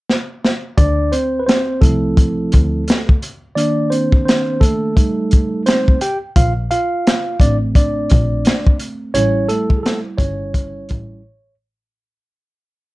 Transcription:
0.09 snare
0.44 snare
0.77 double bass D2, tine electric piano D4 D5, kick, closed hi-hat
1.12 tine electric piano C4 C5, closed hi-hat
1.40 tine electric piano B4
1.46 tine electric piano C4 C5, snare, closed hi-hat
1.81 double bass C2, tine electric piano F3 A3 C4 E4 A4, kick, closed hi-hat
2.17 kick, closed hi-hat
2.52 double bass D2, kick, closed hi-hat
2.88 snare, closed hi-hat
3.09 kick
3.22 closed hi-hat
3.55 tine electric piano D#3 A#3 D4 D5, closed hi-hat
3.90 tine electric piano C4 C5, closed hi-hat
4.12 kick
4.25 tine electric piano C4 C5, snare, closed hi-hat
4.61 tine electric piano A3 A4, kick, closed hi-hat
4.95 tine electric piano G3 A3 D#4, kick, closed hi-hat
5.31 kick, closed hi-hat
5.66 tine electric piano C4 C5, snare, closed hi-hat
5.88 kick
6.01 tine electric piano G4 G5, closed hi-hat
6.36 double bass A#1, tine electric piano F4 F5, kick, closed hi-hat
6.71 tine electric piano F4 F5, closed hi-hat
7.07 snare, closed hi-hat
7.40 double bass A1, tine electric piano A3 C4 D4 D5, kick, closed hi-hat
7.75 tine electric piano D4 D5, kick, closed hi-hat
8.10 double bass A#1, kick, closed hi-hat
8.45 snare, closed hi-hat
8.67 kick
8.80 closed hi-hat
9.14 double bass A1, tine electric piano G3 C#4 E4 C#5, closed hi-hat
9.49 tine electric piano A3 A4, closed hi-hat
9.70 kick
9.77 tine electric piano G#4
9.83 tine electric piano A3 A4, snare, closed hi-hat
10.18 double bass G1, tine electric piano C#4 C#5, kick, closed hi-hat
10.54 kick, closed hi-hat
10.89 double bass A1, tine electric piano G3 C#4 E4, kick, closed hi-hat

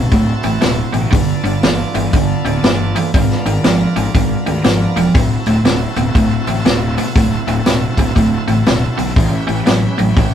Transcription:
Already playing: overdriven electric guitar D2 B2, tonewheel organ C4 E4 F#4 A4
0.12 fingered electric bass D1, overdriven electric guitar D2 A2, kick, open hi-hat
0.43 fingered electric bass A1, overdriven electric guitar D2 A2, open hi-hat
0.61 fingered electric bass D1, overdriven electric guitar D2 B2, snare, open hi-hat
0.93 fingered electric bass A1, overdriven electric guitar D2 B2, open hi-hat
1.11 fingered electric bass G1, overdriven electric guitar G2 D3, tonewheel organ B3 D4 F4 A4, kick, open hi-hat
1.44 fingered electric bass G1, overdriven electric guitar G2 D3, open hi-hat
1.63 fingered electric bass G1, overdriven electric guitar G2 E3, snare, open hi-hat
1.94 fingered electric bass G1, overdriven electric guitar G2 E3, open hi-hat
2.13 fingered electric bass G1, overdriven electric guitar G2 D3, kick, open hi-hat
2.44 fingered electric bass D1, overdriven electric guitar G2 D3, open hi-hat
2.62 fingered electric bass G1, overdriven electric guitar G2 E3, snare, open hi-hat
2.95 overdriven electric guitar G2 E3, open hi-hat
3.14 fingered electric bass G#1, overdriven electric guitar G#2 D#3, tonewheel organ B3 D4 F4 A#4, kick, open hi-hat
3.30 snare
3.46 fingered electric bass G#1, overdriven electric guitar G#2 D#3, open hi-hat
3.64 fingered electric bass G#1, overdriven electric guitar G#2 F3, snare, open hi-hat
3.96 fingered electric bass G#1, overdriven electric guitar G#2 F3, open hi-hat
4.14 fingered electric bass G#1, overdriven electric guitar G#2 D#3, kick, open hi-hat
4.46 fingered electric bass D2, overdriven electric guitar G#2 D#3, open hi-hat
4.64 fingered electric bass G#1, overdriven electric guitar G#2 F3, snare, open hi-hat
4.96 fingered electric bass E1, overdriven electric guitar G#2 F3, open hi-hat
5.14 fingered electric bass D1, overdriven electric guitar D2 A2, tonewheel organ C4 E4 F#4 A4, kick, open hi-hat
5.46 fingered electric bass D1, overdriven electric guitar D2 A2, open hi-hat
5.64 fingered electric bass D1, overdriven electric guitar D2 B2, snare, open hi-hat
5.96 fingered electric bass D1, overdriven electric guitar D2 B2, open hi-hat
6.15 fingered electric bass D1, overdriven electric guitar D2 A2, kick, open hi-hat
6.47 fingered electric bass A1, overdriven electric guitar D2 A2, open hi-hat
6.65 fingered electric bass D1, overdriven electric guitar D2 B2, snare, open hi-hat
6.98 overdriven electric guitar D2 B2, open hi-hat
7.15 fingered electric bass D1, overdriven electric guitar D2 A2, kick, open hi-hat
7.47 fingered electric bass D1, overdriven electric guitar D2 A2, open hi-hat
7.65 fingered electric bass D1, overdriven electric guitar D2 B2, snare, open hi-hat
7.97 fingered electric bass D1, overdriven electric guitar D2 B2, kick, open hi-hat
8.15 fingered electric bass D1, overdriven electric guitar D2 A2, kick, open hi-hat
8.47 fingered electric bass A1, overdriven electric guitar D2 A2, open hi-hat
8.66 fingered electric bass D1, overdriven electric guitar D2 B2, snare, open hi-hat
8.98 fingered electric bass B1, overdriven electric guitar D2 B2, open hi-hat
9.16 fingered electric bass A1, overdriven electric guitar A2 E3, tonewheel organ D4 F4 G#4 C5, kick, open hi-hat
9.32 tonewheel organ C#4 E4 G4 B4
9.47 fingered electric bass A1, overdriven electric guitar A2 E3, open hi-hat
9.66 fingered electric bass A1, overdriven electric guitar A2 F#3, snare, open hi-hat
9.98 fingered electric bass A1, overdriven electric guitar A2 F#3, open hi-hat
10.17 fingered electric bass A1, overdriven electric guitar A2 E3, kick, open hi-hat

